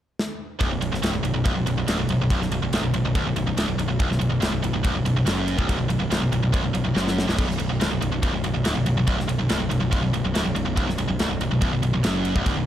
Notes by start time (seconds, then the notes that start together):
0.19 snare
0.60 B0 B1, kick, ride
0.70 B0 B1
0.80 B0 B1, ride
0.91 B0 B1, snare
1.02 C1 C2, snare, ride
1.13 B0 B1
1.23 B0 B1, ride
1.33 B0 B1
1.44 B0 B1, kick, ride
1.55 B0 B1
1.65 B0 B1, ride
1.77 B0 B1
1.87 D1 D2, snare, ride
1.98 B0 B1
2.08 B0 B1, ride
2.18 B0 B1
2.30 B0 B1, kick, ride
2.40 B0 B1, snare
2.50 B0 B1, ride
2.61 B0 B1
2.71 C1 C2, snare, ride
2.81 B0 B1
2.93 B0 B1, ride
3.03 B0 B1
3.15 B0 B1, kick, ride
3.24 B0 B1
3.34 B0 B1, ride
3.46 B0 B1
3.56 D1 D2, snare, ride
3.67 B0 B1
3.77 B0 B1, ride
3.88 B0 B1
3.99 B0 B1, kick, ride
4.09 B0 B1, snare
4.19 B0 B1, ride
4.30 B0 B1
4.41 C1 C2, snare, ride
4.52 B0 B1
4.63 B0 B1, ride
4.73 B0 B1
4.83 B0 B1, kick, ride
4.94 B0 B1
5.04 B0 B1, ride
5.15 B0 B1
5.25 F#1 F#2, snare, ride
5.48 ride
5.58 B0 B1, kick
5.69 B0 B1, kick, ride
5.78 B0 B1
5.89 B0 B1, ride
5.99 B0 B1
6.10 C1 C2, snare, ride
6.21 B0 B1
6.31 B0 B1, ride
6.42 B0 B1
6.53 B0 B1, kick, ride
6.63 B0 B1
6.74 B0 B1, ride
6.85 B0 B1
6.95 F#1 F#2, snare
7.08 snare
7.18 snare
7.27 B0 B1, snare
7.38 B0 B1, kick, ride, crash
7.47 B0 B1, snare
7.58 B0 B1, ride
7.69 B0 B1
7.80 C1 C2, snare, ride
7.91 B0 B1
8.01 B0 B1, ride
8.12 B0 B1
8.22 B0 B1, kick, ride
8.33 B0 B1
8.44 B0 B1, ride
8.54 B0 B1
8.64 D1 D2, snare, ride
8.75 B0 B1
8.86 B0 B1, ride
8.97 B0 B1
9.07 B0 B1, kick, ride
9.18 B0 B1, snare
9.28 B0 B1, ride
9.39 B0 B1
9.49 C1 C2, snare, ride
9.60 B0 B1
9.70 B0 B1, ride
9.81 B0 B1
9.91 B0 B1, kick, ride
10.02 B0 B1
10.13 B0 B1, ride
10.24 B0 B1
10.34 D1 D2, snare, ride
10.45 B0 B1
10.55 B0 B1, ride
10.65 B0 B1
10.76 B0 B1, kick, ride
10.87 B0 B1, snare
10.98 B0 B1, ride
11.08 B0 B1
11.19 C1 C2, snare, ride
11.29 B0 B1
11.39 B0 B1, ride
11.50 B0 B1
11.61 B0 B1, kick, ride
11.72 B0 B1
11.83 B0 B1, ride
11.93 B0 B1
12.04 F#1 F#2, snare, ride
12.25 ride
12.36 B0 B1, kick
12.46 B0 B1, kick, ride
12.56 B0 B1